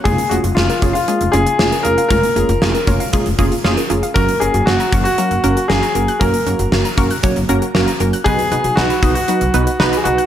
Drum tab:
HH |xxxx-xxxxxxx-xxx|xxxx-xxxxxxx-xxx|xxxx-xxxxxxx-xxx|xxxx-xxxxxxx-xxx|
SD |----o-------o---|----o-------o---|----o-------o---|----o-------o---|
BD |o-----o---------|o-----o-o-o-----|o-----o---------|o-----o-o-------|

HH |xxxx-xxxxxxx-xxx|
SD |----o-------o---|
BD |o-----o---------|